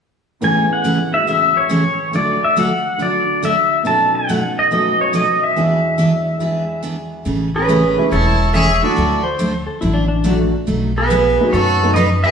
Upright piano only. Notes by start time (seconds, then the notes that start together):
0.41 A2 E3 B3 C#4 G#4
1.13 E3 G#3 F#4
2.11 D2 D3 A3
2.15 F#4 A4
2.98 D3 F#3 D4 F#4
3.83 B2 F#3 C#4 D#4
3.88 A4
4.70 F#3 B3 C#4 F#4
5.56 E2 E3 D4 F#4 G#4
6.39 G#3 E4 G#4
7.97 E3 G#3 A3 C#4 E4
8.83 D3 F#3 A3 D4 E4
10.25 D3 F#3 A3 D4 F#4
11.40 F#3 A3 B3 D#4 F#4
11.82 F#3 A3 B3 D#4 F#4